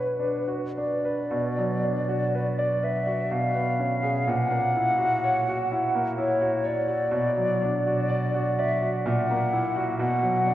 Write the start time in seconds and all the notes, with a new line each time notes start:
Already playing: B2 D4 F#4 B4 C#5
0.20 D4
0.48 F#4
0.78 D4 D5
1.05 B4
1.31 B2
1.58 F#3
1.84 D4
2.08 F#4
2.34 B4
2.58 D5
2.83 B4 E5
3.06 F#4
3.31 B2 F5
3.55 B3
3.80 C#4
4.03 G#4
4.27 A#2 F#5
4.50 A#3
4.76 E4
4.98 F#4
5.24 C#5
5.48 F#4
5.72 E4
5.95 A#3
6.18 E4 C#5
6.41 F#4
6.64 C#5 D5
6.88 F#4
7.11 B2
7.37 F#3
7.62 D4
7.86 F#4
8.09 D5
8.34 F#4
8.59 D5 E5
8.82 F#4
9.05 A#2 F#5
9.30 A#3
9.53 E4
9.76 F#4
9.99 B2 F#5
10.23 F#3
10.47 D4